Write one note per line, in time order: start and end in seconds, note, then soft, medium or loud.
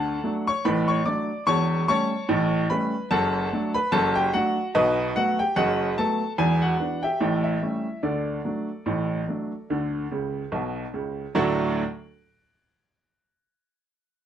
0.00 0.17 D2 medium
0.00 0.17 D3 medium
0.00 0.43 A4 medium
0.00 0.43 F#5 medium
0.00 0.34 A5 loud
0.24 0.46 F#3 medium
0.24 0.47 A3 medium
0.24 0.47 D4 medium
0.47 0.65 C#5 medium
0.47 0.65 C#6 loud
0.65 1.00 A1 loud
0.65 1.00 A2 loud
0.65 0.87 B4 medium
0.65 0.88 B5 loud
0.88 1.05 C#5 medium
0.88 1.06 C#6 loud
1.05 1.28 F#3 medium
1.05 1.29 A3 medium
1.05 1.29 D4 medium
1.05 1.45 D5 medium
1.05 1.45 D6 medium
1.47 1.82 E1 medium
1.47 1.82 E2 loud
1.47 1.86 C#5 medium
1.47 1.86 A5 medium
1.47 1.86 C#6 loud
1.88 2.11 G3 medium
1.88 2.11 A3 medium
1.88 2.12 C#4 medium
1.88 2.67 C#5 medium
1.88 2.67 A5 medium
1.88 2.66 C#6 loud
2.29 2.64 A1 loud
2.29 2.64 A2 loud
2.70 2.93 G3 medium
2.70 2.93 A3 medium
2.70 2.93 C#4 medium
2.70 3.09 B4 medium
2.70 3.09 B5 loud
3.11 3.46 F#1 loud
3.11 3.46 F#2 loud
3.11 3.71 A4 medium
3.11 3.71 F#5 medium
3.11 3.71 A5 loud
3.53 3.75 F#3 medium
3.53 3.75 A3 medium
3.53 3.76 D4 medium
3.74 3.92 B4 medium
3.74 3.93 B5 loud
3.92 4.27 F#1 loud
3.92 4.27 F#2 loud
3.92 4.14 A4 loud
3.92 4.15 A5 loud
4.15 4.33 G4 medium
4.15 4.34 G5 loud
4.33 4.56 F#3 medium
4.33 4.56 A3 medium
4.33 4.57 D4 medium
4.33 4.72 F#4 medium
4.33 4.66 F#5 loud
4.75 5.10 B1 loud
4.75 5.10 B2 loud
4.75 5.14 D#4 medium
4.75 5.13 B4 medium
4.75 5.14 D#5 loud
5.16 5.39 F#3 medium
5.16 5.39 A3 medium
5.16 5.39 B3 medium
5.16 5.38 F#4 medium
5.16 5.39 F#5 loud
5.39 5.56 G4 medium
5.39 5.57 G5 loud
5.56 5.91 F#1 loud
5.56 5.91 F#2 loud
5.56 5.95 F#4 medium
5.56 5.95 D#5 medium
5.56 5.89 F#5 loud
5.98 6.21 F#3 medium
5.98 6.21 A3 medium
5.98 6.21 B3 medium
5.98 6.36 A4 medium
5.98 6.30 A5 loud
6.38 6.73 E1 medium
6.38 6.73 E2 loud
6.38 6.60 G#4 medium
6.38 6.61 G#5 loud
6.62 7.01 F#4 medium
6.62 7.01 F#5 loud
6.80 7.02 E3 medium
6.80 7.03 B3 medium
6.80 7.03 D4 medium
7.03 7.42 G4 medium
7.03 7.42 E5 medium
7.03 7.42 G5 medium
7.20 7.56 A1 loud
7.20 7.56 A2 loud
7.44 8.00 E4 medium
7.44 8.00 E5 medium
7.62 7.85 G3 medium
7.62 7.85 A3 medium
7.62 7.86 C#4 medium
8.03 8.38 D2 medium
8.03 8.38 D3 medium
8.03 8.44 D4 medium
8.03 10.90 A4 medium
8.03 10.89 D5 medium
8.45 8.68 F#3 medium
8.45 8.68 A3 medium
8.45 8.68 D4 medium
8.86 9.21 A1 medium
8.86 9.22 A2 medium
9.28 9.51 F#3 soft
9.28 9.51 A3 soft
9.28 9.51 D4 soft
9.70 10.05 D2 medium
9.70 10.05 D3 medium
10.11 10.42 C#2 medium
10.11 10.42 C#3 medium
10.52 10.83 B1 medium
10.52 10.83 B2 medium
10.94 11.24 C#2 medium
10.94 11.24 C#3 medium
11.35 11.81 D2 loud
11.35 11.82 A2 loud
11.35 11.82 F#3 loud
11.35 11.82 A3 loud
11.35 11.82 D4 loud
11.35 11.82 F#4 loud